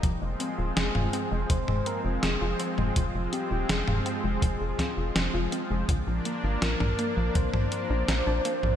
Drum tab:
HH |x-x-x-x-x-x-x-x-|x-x-x-x-x-x-x-x-|x-x-x-x-x-x-x-x-|
SD |----o-------o---|----o-----o-o---|----o-------o---|
T2 |-----o---o-----o|-----o----------|-----o---o-----o|
BD |o-------o-------|o-------o-o-----|o-------o-------|